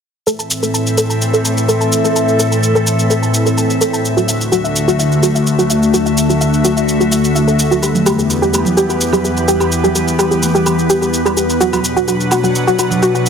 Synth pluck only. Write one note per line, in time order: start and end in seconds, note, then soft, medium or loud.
0.27 0.34 A4 loud
0.39 0.46 A5 medium
0.63 0.70 A4 medium
0.74 0.82 A5 medium
0.98 1.05 A4 medium
1.10 1.17 A5 medium
1.33 1.41 A4 loud
1.45 1.52 A5 medium
1.68 1.76 A4 loud
1.81 1.88 A5 medium
2.04 2.11 A4 medium
2.16 2.23 A5 medium
2.39 2.47 A4 medium
2.52 2.59 A5 medium
2.75 2.82 A4 loud
2.87 2.94 A5 medium
3.10 3.18 A4 medium
3.22 3.29 A5 medium
3.46 3.53 A4 medium
3.57 3.65 A5 medium
3.81 3.89 A4 loud
3.93 4.00 A5 medium
4.17 4.24 F#4 medium
4.28 4.36 E5 medium
4.52 4.59 F#4 loud
4.64 4.71 E5 medium
4.88 4.95 F#4 loud
4.99 5.07 E5 medium
5.23 5.30 F#4 medium
5.35 5.42 E5 medium
5.59 5.66 F#4 loud
5.70 5.78 E5 medium
5.94 6.01 F#4 medium
6.06 6.13 E5 medium
6.29 6.37 F#4 medium
6.41 6.48 E5 medium
6.64 6.72 F#4 medium
6.77 6.84 E5 medium
7.00 7.07 F#4 medium
7.12 7.19 E5 medium
7.35 7.43 E5 medium
7.47 7.55 A4 medium
7.71 7.78 F#4 medium
7.83 7.90 G4 medium
8.06 8.14 G4 loud
8.18 8.26 G4 medium
8.42 8.49 G4 loud
8.53 8.61 G4 medium
8.77 8.85 G4 loud
8.89 8.96 G4 medium
9.13 9.20 G4 loud
9.24 9.32 G4 medium
9.48 9.56 G4 loud
9.60 9.67 G4 medium
9.84 9.91 G4 medium
9.95 10.03 G4 medium
10.19 10.26 G4 loud
10.31 10.38 G4 medium
10.55 10.62 G4 loud
10.66 10.74 G4 medium
10.90 10.97 G4 loud
11.02 11.09 G4 medium
11.25 11.33 G4 loud
11.37 11.45 G4 medium
11.60 11.68 F#4 loud
11.73 11.80 F#4 medium
11.96 12.04 F#4 medium
12.08 12.15 F#4 medium
12.31 12.39 F#4 loud
12.44 12.51 F#4 medium
12.67 12.74 F#4 loud
12.79 12.86 F#4 medium
13.02 13.10 F#4 loud
13.15 13.22 F#4 medium